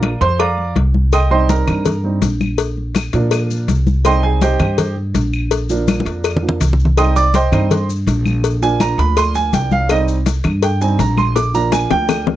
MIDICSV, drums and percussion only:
0, 0, Header, 1, 2, 480
1, 0, Start_track
1, 0, Key_signature, -3, "minor"
1, 0, Tempo, 365408
1, 1482, Time_signature, 4, 2, 24, 8
1, 16237, End_track
2, 0, Start_track
2, 0, Title_t, "Drums"
2, 34, Note_on_c, 9, 63, 92
2, 40, Note_on_c, 9, 56, 70
2, 41, Note_on_c, 9, 75, 62
2, 165, Note_off_c, 9, 63, 0
2, 172, Note_off_c, 9, 56, 0
2, 172, Note_off_c, 9, 75, 0
2, 274, Note_on_c, 9, 63, 35
2, 280, Note_on_c, 9, 56, 73
2, 406, Note_off_c, 9, 63, 0
2, 412, Note_off_c, 9, 56, 0
2, 513, Note_on_c, 9, 63, 35
2, 521, Note_on_c, 9, 75, 62
2, 522, Note_on_c, 9, 56, 108
2, 645, Note_off_c, 9, 63, 0
2, 652, Note_off_c, 9, 75, 0
2, 653, Note_off_c, 9, 56, 0
2, 758, Note_on_c, 9, 63, 39
2, 889, Note_off_c, 9, 63, 0
2, 996, Note_on_c, 9, 63, 83
2, 1000, Note_on_c, 9, 56, 72
2, 1127, Note_off_c, 9, 63, 0
2, 1132, Note_off_c, 9, 56, 0
2, 1240, Note_on_c, 9, 63, 84
2, 1371, Note_off_c, 9, 63, 0
2, 1478, Note_on_c, 9, 70, 70
2, 1479, Note_on_c, 9, 63, 32
2, 1480, Note_on_c, 9, 56, 99
2, 1486, Note_on_c, 9, 75, 72
2, 1609, Note_off_c, 9, 70, 0
2, 1611, Note_off_c, 9, 63, 0
2, 1612, Note_off_c, 9, 56, 0
2, 1617, Note_off_c, 9, 75, 0
2, 1719, Note_on_c, 9, 63, 34
2, 1850, Note_off_c, 9, 63, 0
2, 1961, Note_on_c, 9, 63, 97
2, 1961, Note_on_c, 9, 70, 74
2, 1962, Note_on_c, 9, 56, 71
2, 2092, Note_off_c, 9, 63, 0
2, 2093, Note_off_c, 9, 56, 0
2, 2093, Note_off_c, 9, 70, 0
2, 2199, Note_on_c, 9, 70, 29
2, 2200, Note_on_c, 9, 56, 63
2, 2201, Note_on_c, 9, 63, 37
2, 2201, Note_on_c, 9, 64, 83
2, 2201, Note_on_c, 9, 75, 63
2, 2331, Note_off_c, 9, 56, 0
2, 2331, Note_off_c, 9, 70, 0
2, 2332, Note_off_c, 9, 63, 0
2, 2332, Note_off_c, 9, 64, 0
2, 2333, Note_off_c, 9, 75, 0
2, 2435, Note_on_c, 9, 70, 57
2, 2437, Note_on_c, 9, 56, 99
2, 2443, Note_on_c, 9, 63, 37
2, 2443, Note_on_c, 9, 64, 79
2, 2567, Note_off_c, 9, 70, 0
2, 2569, Note_off_c, 9, 56, 0
2, 2574, Note_off_c, 9, 63, 0
2, 2574, Note_off_c, 9, 64, 0
2, 2679, Note_on_c, 9, 63, 36
2, 2810, Note_off_c, 9, 63, 0
2, 2914, Note_on_c, 9, 56, 72
2, 2916, Note_on_c, 9, 63, 95
2, 2917, Note_on_c, 9, 70, 77
2, 3045, Note_off_c, 9, 56, 0
2, 3047, Note_off_c, 9, 63, 0
2, 3048, Note_off_c, 9, 70, 0
2, 3161, Note_on_c, 9, 70, 33
2, 3162, Note_on_c, 9, 63, 75
2, 3164, Note_on_c, 9, 75, 66
2, 3293, Note_off_c, 9, 63, 0
2, 3293, Note_off_c, 9, 70, 0
2, 3296, Note_off_c, 9, 75, 0
2, 3391, Note_on_c, 9, 56, 109
2, 3404, Note_on_c, 9, 63, 34
2, 3405, Note_on_c, 9, 70, 68
2, 3522, Note_off_c, 9, 56, 0
2, 3535, Note_off_c, 9, 63, 0
2, 3536, Note_off_c, 9, 70, 0
2, 3645, Note_on_c, 9, 63, 36
2, 3776, Note_off_c, 9, 63, 0
2, 3870, Note_on_c, 9, 56, 75
2, 3883, Note_on_c, 9, 70, 82
2, 3886, Note_on_c, 9, 63, 92
2, 3889, Note_on_c, 9, 75, 70
2, 4002, Note_off_c, 9, 56, 0
2, 4014, Note_off_c, 9, 70, 0
2, 4017, Note_off_c, 9, 63, 0
2, 4020, Note_off_c, 9, 75, 0
2, 4112, Note_on_c, 9, 56, 72
2, 4126, Note_on_c, 9, 70, 29
2, 4128, Note_on_c, 9, 63, 33
2, 4244, Note_off_c, 9, 56, 0
2, 4257, Note_off_c, 9, 70, 0
2, 4259, Note_off_c, 9, 63, 0
2, 4349, Note_on_c, 9, 56, 113
2, 4363, Note_on_c, 9, 63, 35
2, 4363, Note_on_c, 9, 70, 64
2, 4364, Note_on_c, 9, 75, 66
2, 4481, Note_off_c, 9, 56, 0
2, 4494, Note_off_c, 9, 63, 0
2, 4494, Note_off_c, 9, 70, 0
2, 4495, Note_off_c, 9, 75, 0
2, 4602, Note_on_c, 9, 63, 39
2, 4605, Note_on_c, 9, 70, 65
2, 4733, Note_off_c, 9, 63, 0
2, 4736, Note_off_c, 9, 70, 0
2, 4837, Note_on_c, 9, 56, 65
2, 4840, Note_on_c, 9, 63, 86
2, 4843, Note_on_c, 9, 70, 72
2, 4968, Note_off_c, 9, 56, 0
2, 4971, Note_off_c, 9, 63, 0
2, 4974, Note_off_c, 9, 70, 0
2, 5080, Note_on_c, 9, 63, 80
2, 5081, Note_on_c, 9, 70, 32
2, 5211, Note_off_c, 9, 63, 0
2, 5212, Note_off_c, 9, 70, 0
2, 5317, Note_on_c, 9, 56, 107
2, 5320, Note_on_c, 9, 70, 66
2, 5323, Note_on_c, 9, 75, 75
2, 5325, Note_on_c, 9, 63, 35
2, 5448, Note_off_c, 9, 56, 0
2, 5452, Note_off_c, 9, 70, 0
2, 5455, Note_off_c, 9, 75, 0
2, 5456, Note_off_c, 9, 63, 0
2, 5564, Note_on_c, 9, 63, 34
2, 5695, Note_off_c, 9, 63, 0
2, 5800, Note_on_c, 9, 63, 91
2, 5801, Note_on_c, 9, 70, 76
2, 5804, Note_on_c, 9, 56, 74
2, 5931, Note_off_c, 9, 63, 0
2, 5933, Note_off_c, 9, 70, 0
2, 5935, Note_off_c, 9, 56, 0
2, 6036, Note_on_c, 9, 56, 71
2, 6041, Note_on_c, 9, 75, 65
2, 6043, Note_on_c, 9, 63, 37
2, 6043, Note_on_c, 9, 64, 82
2, 6046, Note_on_c, 9, 70, 29
2, 6167, Note_off_c, 9, 56, 0
2, 6173, Note_off_c, 9, 75, 0
2, 6174, Note_off_c, 9, 63, 0
2, 6174, Note_off_c, 9, 64, 0
2, 6177, Note_off_c, 9, 70, 0
2, 6279, Note_on_c, 9, 56, 106
2, 6285, Note_on_c, 9, 63, 34
2, 6285, Note_on_c, 9, 64, 73
2, 6286, Note_on_c, 9, 70, 58
2, 6410, Note_off_c, 9, 56, 0
2, 6417, Note_off_c, 9, 63, 0
2, 6417, Note_off_c, 9, 64, 0
2, 6418, Note_off_c, 9, 70, 0
2, 6522, Note_on_c, 9, 63, 39
2, 6653, Note_off_c, 9, 63, 0
2, 6760, Note_on_c, 9, 63, 91
2, 6762, Note_on_c, 9, 56, 73
2, 6764, Note_on_c, 9, 70, 72
2, 6892, Note_off_c, 9, 63, 0
2, 6893, Note_off_c, 9, 56, 0
2, 6895, Note_off_c, 9, 70, 0
2, 7003, Note_on_c, 9, 70, 30
2, 7009, Note_on_c, 9, 75, 69
2, 7135, Note_off_c, 9, 70, 0
2, 7140, Note_off_c, 9, 75, 0
2, 7240, Note_on_c, 9, 56, 110
2, 7243, Note_on_c, 9, 70, 71
2, 7245, Note_on_c, 9, 63, 36
2, 7371, Note_off_c, 9, 56, 0
2, 7375, Note_off_c, 9, 70, 0
2, 7376, Note_off_c, 9, 63, 0
2, 7481, Note_on_c, 9, 70, 68
2, 7482, Note_on_c, 9, 63, 36
2, 7613, Note_off_c, 9, 70, 0
2, 7614, Note_off_c, 9, 63, 0
2, 7721, Note_on_c, 9, 70, 82
2, 7724, Note_on_c, 9, 63, 92
2, 7726, Note_on_c, 9, 56, 71
2, 7731, Note_on_c, 9, 75, 62
2, 7852, Note_off_c, 9, 70, 0
2, 7855, Note_off_c, 9, 63, 0
2, 7857, Note_off_c, 9, 56, 0
2, 7862, Note_off_c, 9, 75, 0
2, 7883, Note_on_c, 9, 63, 97
2, 7961, Note_on_c, 9, 70, 29
2, 7964, Note_on_c, 9, 56, 67
2, 8014, Note_off_c, 9, 63, 0
2, 8093, Note_off_c, 9, 70, 0
2, 8095, Note_off_c, 9, 56, 0
2, 8199, Note_on_c, 9, 70, 65
2, 8201, Note_on_c, 9, 56, 99
2, 8209, Note_on_c, 9, 75, 69
2, 8330, Note_off_c, 9, 70, 0
2, 8332, Note_off_c, 9, 56, 0
2, 8340, Note_off_c, 9, 75, 0
2, 8362, Note_on_c, 9, 64, 88
2, 8493, Note_off_c, 9, 64, 0
2, 8520, Note_on_c, 9, 64, 103
2, 8652, Note_off_c, 9, 64, 0
2, 8681, Note_on_c, 9, 70, 77
2, 8682, Note_on_c, 9, 56, 74
2, 8684, Note_on_c, 9, 64, 86
2, 8813, Note_off_c, 9, 56, 0
2, 8813, Note_off_c, 9, 70, 0
2, 8816, Note_off_c, 9, 64, 0
2, 8842, Note_on_c, 9, 64, 79
2, 8929, Note_on_c, 9, 70, 30
2, 8974, Note_off_c, 9, 64, 0
2, 9001, Note_on_c, 9, 64, 96
2, 9060, Note_off_c, 9, 70, 0
2, 9132, Note_off_c, 9, 64, 0
2, 9162, Note_on_c, 9, 56, 102
2, 9164, Note_on_c, 9, 70, 70
2, 9165, Note_on_c, 9, 63, 35
2, 9168, Note_on_c, 9, 75, 73
2, 9294, Note_off_c, 9, 56, 0
2, 9295, Note_off_c, 9, 70, 0
2, 9297, Note_off_c, 9, 63, 0
2, 9299, Note_off_c, 9, 75, 0
2, 9405, Note_on_c, 9, 63, 34
2, 9407, Note_on_c, 9, 70, 64
2, 9537, Note_off_c, 9, 63, 0
2, 9538, Note_off_c, 9, 70, 0
2, 9641, Note_on_c, 9, 63, 88
2, 9647, Note_on_c, 9, 70, 71
2, 9648, Note_on_c, 9, 56, 79
2, 9772, Note_off_c, 9, 63, 0
2, 9779, Note_off_c, 9, 56, 0
2, 9779, Note_off_c, 9, 70, 0
2, 9882, Note_on_c, 9, 63, 36
2, 9882, Note_on_c, 9, 64, 84
2, 9888, Note_on_c, 9, 75, 59
2, 9889, Note_on_c, 9, 56, 69
2, 9890, Note_on_c, 9, 70, 29
2, 10014, Note_off_c, 9, 63, 0
2, 10014, Note_off_c, 9, 64, 0
2, 10019, Note_off_c, 9, 75, 0
2, 10020, Note_off_c, 9, 56, 0
2, 10021, Note_off_c, 9, 70, 0
2, 10126, Note_on_c, 9, 63, 35
2, 10126, Note_on_c, 9, 64, 76
2, 10129, Note_on_c, 9, 70, 58
2, 10130, Note_on_c, 9, 56, 109
2, 10257, Note_off_c, 9, 63, 0
2, 10257, Note_off_c, 9, 64, 0
2, 10260, Note_off_c, 9, 70, 0
2, 10262, Note_off_c, 9, 56, 0
2, 10365, Note_on_c, 9, 63, 41
2, 10372, Note_on_c, 9, 70, 66
2, 10497, Note_off_c, 9, 63, 0
2, 10504, Note_off_c, 9, 70, 0
2, 10604, Note_on_c, 9, 63, 85
2, 10607, Note_on_c, 9, 56, 76
2, 10611, Note_on_c, 9, 70, 72
2, 10735, Note_off_c, 9, 63, 0
2, 10739, Note_off_c, 9, 56, 0
2, 10742, Note_off_c, 9, 70, 0
2, 10844, Note_on_c, 9, 75, 68
2, 10846, Note_on_c, 9, 63, 66
2, 10850, Note_on_c, 9, 70, 33
2, 10976, Note_off_c, 9, 75, 0
2, 10978, Note_off_c, 9, 63, 0
2, 10982, Note_off_c, 9, 70, 0
2, 11081, Note_on_c, 9, 63, 35
2, 11086, Note_on_c, 9, 56, 96
2, 11091, Note_on_c, 9, 70, 64
2, 11212, Note_off_c, 9, 63, 0
2, 11218, Note_off_c, 9, 56, 0
2, 11222, Note_off_c, 9, 70, 0
2, 11324, Note_on_c, 9, 63, 36
2, 11330, Note_on_c, 9, 70, 66
2, 11456, Note_off_c, 9, 63, 0
2, 11462, Note_off_c, 9, 70, 0
2, 11562, Note_on_c, 9, 63, 88
2, 11564, Note_on_c, 9, 75, 61
2, 11566, Note_on_c, 9, 70, 69
2, 11569, Note_on_c, 9, 56, 69
2, 11693, Note_off_c, 9, 63, 0
2, 11696, Note_off_c, 9, 75, 0
2, 11697, Note_off_c, 9, 70, 0
2, 11700, Note_off_c, 9, 56, 0
2, 11800, Note_on_c, 9, 63, 35
2, 11809, Note_on_c, 9, 70, 28
2, 11810, Note_on_c, 9, 56, 72
2, 11932, Note_off_c, 9, 63, 0
2, 11940, Note_off_c, 9, 70, 0
2, 11941, Note_off_c, 9, 56, 0
2, 12040, Note_on_c, 9, 63, 38
2, 12042, Note_on_c, 9, 56, 108
2, 12045, Note_on_c, 9, 70, 70
2, 12045, Note_on_c, 9, 75, 64
2, 12171, Note_off_c, 9, 63, 0
2, 12174, Note_off_c, 9, 56, 0
2, 12176, Note_off_c, 9, 75, 0
2, 12177, Note_off_c, 9, 70, 0
2, 12279, Note_on_c, 9, 70, 61
2, 12283, Note_on_c, 9, 63, 37
2, 12411, Note_off_c, 9, 70, 0
2, 12414, Note_off_c, 9, 63, 0
2, 12520, Note_on_c, 9, 63, 91
2, 12521, Note_on_c, 9, 70, 76
2, 12526, Note_on_c, 9, 56, 71
2, 12651, Note_off_c, 9, 63, 0
2, 12653, Note_off_c, 9, 70, 0
2, 12657, Note_off_c, 9, 56, 0
2, 12757, Note_on_c, 9, 70, 32
2, 12761, Note_on_c, 9, 63, 81
2, 12888, Note_off_c, 9, 70, 0
2, 12892, Note_off_c, 9, 63, 0
2, 12996, Note_on_c, 9, 56, 102
2, 13001, Note_on_c, 9, 70, 64
2, 13004, Note_on_c, 9, 75, 73
2, 13005, Note_on_c, 9, 63, 34
2, 13128, Note_off_c, 9, 56, 0
2, 13132, Note_off_c, 9, 70, 0
2, 13135, Note_off_c, 9, 75, 0
2, 13136, Note_off_c, 9, 63, 0
2, 13242, Note_on_c, 9, 63, 33
2, 13243, Note_on_c, 9, 70, 60
2, 13374, Note_off_c, 9, 63, 0
2, 13374, Note_off_c, 9, 70, 0
2, 13478, Note_on_c, 9, 56, 75
2, 13483, Note_on_c, 9, 63, 94
2, 13485, Note_on_c, 9, 70, 73
2, 13609, Note_off_c, 9, 56, 0
2, 13615, Note_off_c, 9, 63, 0
2, 13617, Note_off_c, 9, 70, 0
2, 13713, Note_on_c, 9, 56, 68
2, 13724, Note_on_c, 9, 63, 34
2, 13724, Note_on_c, 9, 64, 82
2, 13725, Note_on_c, 9, 75, 60
2, 13727, Note_on_c, 9, 70, 27
2, 13845, Note_off_c, 9, 56, 0
2, 13855, Note_off_c, 9, 63, 0
2, 13855, Note_off_c, 9, 64, 0
2, 13857, Note_off_c, 9, 75, 0
2, 13858, Note_off_c, 9, 70, 0
2, 13958, Note_on_c, 9, 56, 111
2, 13963, Note_on_c, 9, 63, 35
2, 13968, Note_on_c, 9, 70, 63
2, 14089, Note_off_c, 9, 56, 0
2, 14094, Note_off_c, 9, 63, 0
2, 14099, Note_off_c, 9, 70, 0
2, 14197, Note_on_c, 9, 63, 40
2, 14206, Note_on_c, 9, 70, 64
2, 14328, Note_off_c, 9, 63, 0
2, 14337, Note_off_c, 9, 70, 0
2, 14438, Note_on_c, 9, 56, 71
2, 14438, Note_on_c, 9, 63, 90
2, 14447, Note_on_c, 9, 70, 72
2, 14569, Note_off_c, 9, 56, 0
2, 14569, Note_off_c, 9, 63, 0
2, 14578, Note_off_c, 9, 70, 0
2, 14677, Note_on_c, 9, 63, 70
2, 14681, Note_on_c, 9, 75, 74
2, 14690, Note_on_c, 9, 70, 29
2, 14809, Note_off_c, 9, 63, 0
2, 14812, Note_off_c, 9, 75, 0
2, 14821, Note_off_c, 9, 70, 0
2, 14922, Note_on_c, 9, 56, 95
2, 14922, Note_on_c, 9, 60, 70
2, 14929, Note_on_c, 9, 70, 75
2, 15054, Note_off_c, 9, 56, 0
2, 15054, Note_off_c, 9, 60, 0
2, 15061, Note_off_c, 9, 70, 0
2, 15157, Note_on_c, 9, 63, 37
2, 15165, Note_on_c, 9, 70, 63
2, 15288, Note_off_c, 9, 63, 0
2, 15297, Note_off_c, 9, 70, 0
2, 15395, Note_on_c, 9, 56, 73
2, 15395, Note_on_c, 9, 60, 77
2, 15395, Note_on_c, 9, 63, 94
2, 15402, Note_on_c, 9, 75, 69
2, 15409, Note_on_c, 9, 70, 78
2, 15526, Note_off_c, 9, 63, 0
2, 15527, Note_off_c, 9, 56, 0
2, 15527, Note_off_c, 9, 60, 0
2, 15533, Note_off_c, 9, 75, 0
2, 15540, Note_off_c, 9, 70, 0
2, 15637, Note_on_c, 9, 63, 36
2, 15639, Note_on_c, 9, 56, 74
2, 15639, Note_on_c, 9, 61, 84
2, 15651, Note_on_c, 9, 70, 31
2, 15769, Note_off_c, 9, 63, 0
2, 15770, Note_off_c, 9, 56, 0
2, 15770, Note_off_c, 9, 61, 0
2, 15782, Note_off_c, 9, 70, 0
2, 15878, Note_on_c, 9, 56, 120
2, 15878, Note_on_c, 9, 61, 85
2, 15880, Note_on_c, 9, 63, 37
2, 15885, Note_on_c, 9, 75, 75
2, 15892, Note_on_c, 9, 70, 72
2, 16009, Note_off_c, 9, 56, 0
2, 16009, Note_off_c, 9, 61, 0
2, 16012, Note_off_c, 9, 63, 0
2, 16016, Note_off_c, 9, 75, 0
2, 16023, Note_off_c, 9, 70, 0
2, 16116, Note_on_c, 9, 61, 96
2, 16122, Note_on_c, 9, 63, 38
2, 16237, Note_off_c, 9, 61, 0
2, 16237, Note_off_c, 9, 63, 0
2, 16237, End_track
0, 0, End_of_file